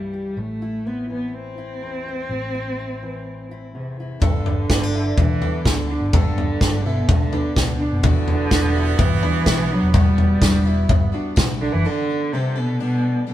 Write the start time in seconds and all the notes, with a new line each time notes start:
Already playing: C2 G2 E3 G3 E4
0.13 G4
0.37 A1 A2 A3
0.62 E4
0.87 B3 C4
1.10 E3 B3
1.28 B3
1.34 C4
1.58 E4
1.82 E2
2.08 E4
2.30 A1 A2
2.54 E4
2.79 C4
3.03 E3
3.51 E4
3.74 E2 C3
4.00 E4
4.20 G1 G2 D3 G3 B3 D4 A4, kick, floor tom
4.46 floor tom
4.69 G1 G3 B3 D4 A4, kick, snare
4.83 D4
4.94 D3 B3 D4 E4 A4
5.18 B1 E3 D4, kick, floor tom
5.42 B3 D4 A4, floor tom
5.65 D2 D3 G3 B3 D4 A4, kick, snare
5.90 D4
6.01 G1
6.13 G1 G2 D3 G3 B3 D4 A4, kick, floor tom
6.38 floor tom
6.61 G1 G3 B3 D4 A4, kick, snare
6.85 B2 D3 B3 D4 E4 A4
7.09 B1 D3 D4, kick, floor tom
7.33 B3 D4 A4, floor tom
7.55 D2 B2 G3 B3 D4 A4, kick, snare
7.79 D4
7.92 F#1
8.03 E1 E2 D3 E3 G3 B3 E4 F#4, kick, floor tom
8.28 floor tom
8.51 E1 G3 B3 D4 E4 F#4, kick, snare, tambourine
8.74 G3 B3 E4 F#4
8.99 G1 E3, kick, floor tom
9.23 G3 B3 D4 E4 F#4, floor tom
9.46 B1 G3 B3 E4 F#4, kick, snare, tambourine
9.71 F#3 D4
9.82 E1
9.94 E1 E2 E3 G3 B3 E4 F#4, kick, floor tom
10.18 floor tom
10.41 E1 G3 B3 D4 E4 F#4, kick, snare, tambourine
10.65 G3 B3 E4 F#4
10.89 G1, kick, floor tom
11.12 G3 B3 D4 E4 F#4
11.36 B1 G3 B3 E4 F#4, kick, snare, tambourine
11.61 D3 D4
11.72 F#1 E3
11.85 D3 G3 B3 D4 A4
12.09 B3 D4 A4
12.33 C3 G3 B3 D4 A4
12.56 B2 B3 D4 A4
12.80 B2 G3 B3 D4 A4
13.27 B2 G3 B3 D4 A4